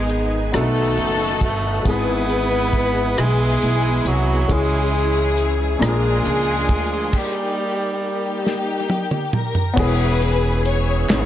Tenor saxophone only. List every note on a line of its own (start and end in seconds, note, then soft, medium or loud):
0.00 0.10 G#3 medium
0.54 1.38 A3 medium
1.44 1.84 A3 medium
1.88 3.20 B3 medium
3.19 4.08 G#3 medium
4.07 4.53 F#3 medium
4.52 5.55 G#3 medium
5.84 7.19 G#3 medium
7.18 8.92 G3 medium